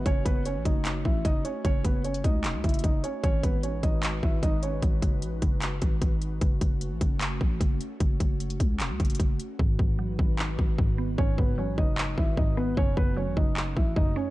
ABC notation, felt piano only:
X:1
M:4/4
L:1/8
Q:1/4=151
K:F#dor
V:1 name="Felt piano"
[Cc] [B,B] [Cc] [Dd]2 [Ee] [Dd] [Cc] | [Cc] [B,B] [Cc] [Dd]2 [Ee] [Dd] [Cc] | [Cc] [B,B] [Cc] [Dd]2 [Ee] [Dd] [Cc] | z8 |
z8 | z8 | z8 | [Cc] [B,B] [Cc] [Dd]2 [Ee] [Dd] [B,B] |
[Cc] [B,B] [Cc] [Dd]2 [Ee] [Dd] [Cc] |]